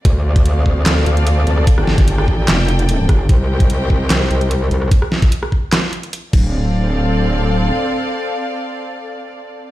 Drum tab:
CC |----------------|----------------|----------------|--------------x-|
HH |x--xx---x-xxx-x-|x--xx---x-xxx-x-|x--xx---x-xxx-x-|x--xx---x-xxx---|
CP |--------x-------|--------x-------|--------x-------|--------x-------|
SD |--------or-----r|-ro--r--o-----r-|--------or-----r|-ro--r--o-------|
BD |o--o--o---------|o--o--o-------o-|o--o--o---------|o--o--o-------o-|

CC |----------------|----------------|
HH |----------------|----------------|
CP |----------------|----------------|
SD |----------------|----------------|
BD |----------------|----------------|